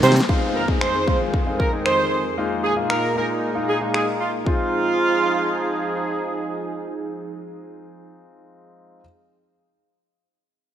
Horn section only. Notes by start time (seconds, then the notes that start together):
0.03 C5
0.55 A#4
0.81 C5
1.07 C5
1.59 A#4
1.85 C5
2.64 G#4
2.90 A#4
3.16 A#4
3.68 G#4
3.94 G#4
4.21 F4
4.47 F4